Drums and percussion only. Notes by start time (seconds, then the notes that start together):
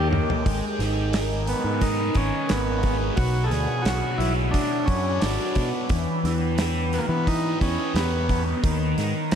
0.13 mid tom
0.30 floor tom
0.46 kick, open hi-hat
0.80 snare, open hi-hat
1.13 snare, open hi-hat
1.47 open hi-hat
1.81 kick, open hi-hat
2.14 kick, open hi-hat
2.49 snare, open hi-hat
2.83 kick, open hi-hat
3.17 kick, open hi-hat
3.51 snare, open hi-hat
3.85 snare, open hi-hat
4.20 open hi-hat
4.54 kick, open hi-hat
4.88 kick, open hi-hat
5.22 snare, open hi-hat
5.55 kick, open hi-hat
5.89 kick, open hi-hat
6.25 snare, open hi-hat
6.58 snare, open hi-hat
6.93 open hi-hat
7.27 kick, open hi-hat
7.61 kick, open hi-hat
7.96 snare, open hi-hat
8.29 kick, open hi-hat
8.64 kick, open hi-hat
8.98 snare, open hi-hat
9.31 open hi-hat